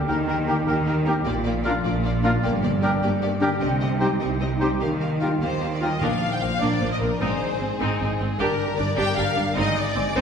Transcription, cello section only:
0, 0, Header, 1, 2, 480
1, 0, Start_track
1, 0, Tempo, 392670
1, 93, Time_signature, 6, 3, 24, 8
1, 4413, Tempo, 401070
1, 7773, Tempo, 393959
1, 12394, End_track
2, 0, Start_track
2, 0, Title_t, "Cello section"
2, 0, Program_c, 0, 48
2, 96, Note_on_c, 0, 51, 64
2, 732, Note_off_c, 0, 51, 0
2, 825, Note_on_c, 0, 51, 61
2, 1451, Note_off_c, 0, 51, 0
2, 1545, Note_on_c, 0, 46, 74
2, 2172, Note_off_c, 0, 46, 0
2, 2251, Note_on_c, 0, 46, 67
2, 2887, Note_off_c, 0, 46, 0
2, 2973, Note_on_c, 0, 43, 74
2, 3607, Note_off_c, 0, 43, 0
2, 3693, Note_on_c, 0, 43, 68
2, 4329, Note_off_c, 0, 43, 0
2, 4409, Note_on_c, 0, 48, 74
2, 5038, Note_off_c, 0, 48, 0
2, 5117, Note_on_c, 0, 48, 54
2, 5757, Note_off_c, 0, 48, 0
2, 5844, Note_on_c, 0, 51, 60
2, 6485, Note_off_c, 0, 51, 0
2, 6563, Note_on_c, 0, 51, 51
2, 7207, Note_off_c, 0, 51, 0
2, 7286, Note_on_c, 0, 46, 65
2, 7382, Note_off_c, 0, 46, 0
2, 7773, Note_on_c, 0, 46, 49
2, 7869, Note_off_c, 0, 46, 0
2, 8013, Note_on_c, 0, 46, 57
2, 8110, Note_off_c, 0, 46, 0
2, 8249, Note_on_c, 0, 46, 44
2, 8346, Note_off_c, 0, 46, 0
2, 8492, Note_on_c, 0, 46, 46
2, 8590, Note_off_c, 0, 46, 0
2, 8738, Note_on_c, 0, 44, 67
2, 8834, Note_off_c, 0, 44, 0
2, 9213, Note_on_c, 0, 44, 50
2, 9311, Note_off_c, 0, 44, 0
2, 9456, Note_on_c, 0, 44, 64
2, 9553, Note_off_c, 0, 44, 0
2, 9696, Note_on_c, 0, 44, 49
2, 9793, Note_off_c, 0, 44, 0
2, 9938, Note_on_c, 0, 44, 49
2, 10034, Note_off_c, 0, 44, 0
2, 10184, Note_on_c, 0, 43, 69
2, 10278, Note_off_c, 0, 43, 0
2, 10660, Note_on_c, 0, 43, 50
2, 10756, Note_off_c, 0, 43, 0
2, 10899, Note_on_c, 0, 43, 67
2, 10994, Note_off_c, 0, 43, 0
2, 11142, Note_on_c, 0, 43, 49
2, 11236, Note_off_c, 0, 43, 0
2, 11389, Note_on_c, 0, 43, 52
2, 11482, Note_off_c, 0, 43, 0
2, 11623, Note_on_c, 0, 44, 78
2, 11717, Note_off_c, 0, 44, 0
2, 12100, Note_on_c, 0, 44, 58
2, 12194, Note_off_c, 0, 44, 0
2, 12334, Note_on_c, 0, 44, 72
2, 12394, Note_off_c, 0, 44, 0
2, 12394, End_track
0, 0, End_of_file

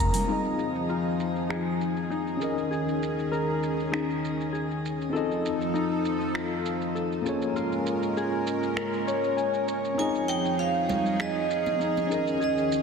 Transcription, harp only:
0, 0, Header, 1, 2, 480
1, 0, Start_track
1, 0, Key_signature, -4, "minor"
1, 0, Tempo, 606061
1, 227, Time_signature, 4, 2, 24, 8
1, 10157, End_track
2, 0, Start_track
2, 0, Title_t, "Harp"
2, 0, Program_c, 0, 46
2, 0, Note_on_c, 0, 65, 109
2, 0, Note_on_c, 0, 68, 78
2, 0, Note_on_c, 0, 70, 86
2, 0, Note_on_c, 0, 82, 79
2, 219, Note_on_c, 0, 63, 84
2, 301, Note_off_c, 0, 65, 0
2, 586, Note_off_c, 0, 68, 0
2, 706, Note_on_c, 0, 65, 65
2, 942, Note_off_c, 0, 70, 0
2, 1090, Note_off_c, 0, 82, 0
2, 1183, Note_on_c, 0, 68, 73
2, 1661, Note_off_c, 0, 63, 0
2, 1664, Note_on_c, 0, 63, 79
2, 2141, Note_off_c, 0, 68, 0
2, 2144, Note_on_c, 0, 68, 68
2, 2625, Note_on_c, 0, 70, 65
2, 2704, Note_off_c, 0, 65, 0
2, 3099, Note_off_c, 0, 63, 0
2, 3102, Note_on_c, 0, 63, 86
2, 3580, Note_off_c, 0, 68, 0
2, 3583, Note_on_c, 0, 68, 59
2, 4060, Note_on_c, 0, 69, 72
2, 4108, Note_off_c, 0, 68, 0
2, 4108, Note_off_c, 0, 70, 0
2, 4539, Note_off_c, 0, 63, 0
2, 4542, Note_on_c, 0, 63, 88
2, 5022, Note_on_c, 0, 65, 68
2, 5501, Note_off_c, 0, 69, 0
2, 5504, Note_on_c, 0, 69, 59
2, 5982, Note_off_c, 0, 65, 0
2, 5986, Note_on_c, 0, 65, 88
2, 6469, Note_on_c, 0, 68, 69
2, 6517, Note_off_c, 0, 69, 0
2, 6684, Note_off_c, 0, 63, 0
2, 6944, Note_on_c, 0, 70, 74
2, 7183, Note_on_c, 0, 73, 83
2, 7417, Note_on_c, 0, 80, 60
2, 7658, Note_off_c, 0, 73, 0
2, 7661, Note_on_c, 0, 73, 62
2, 7901, Note_on_c, 0, 63, 87
2, 7984, Note_off_c, 0, 65, 0
2, 8270, Note_off_c, 0, 68, 0
2, 8383, Note_on_c, 0, 65, 67
2, 8605, Note_off_c, 0, 80, 0
2, 8624, Note_off_c, 0, 70, 0
2, 8866, Note_on_c, 0, 68, 70
2, 9175, Note_off_c, 0, 73, 0
2, 9337, Note_off_c, 0, 63, 0
2, 9340, Note_on_c, 0, 63, 83
2, 9817, Note_off_c, 0, 68, 0
2, 9820, Note_on_c, 0, 68, 74
2, 10157, Note_off_c, 0, 63, 0
2, 10157, Note_off_c, 0, 65, 0
2, 10157, Note_off_c, 0, 68, 0
2, 10157, End_track
0, 0, End_of_file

